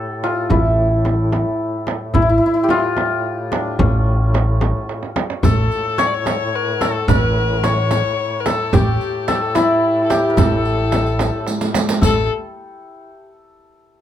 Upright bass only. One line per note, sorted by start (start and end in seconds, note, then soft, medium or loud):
0.50 1.42 A1 loud
2.15 2.38 A1 loud
3.79 4.71 A1 loud
5.43 5.66 A1 loud
7.08 8.00 A1 loud
8.73 8.96 A1 loud
10.37 11.29 A1 loud
12.02 12.27 A1 medium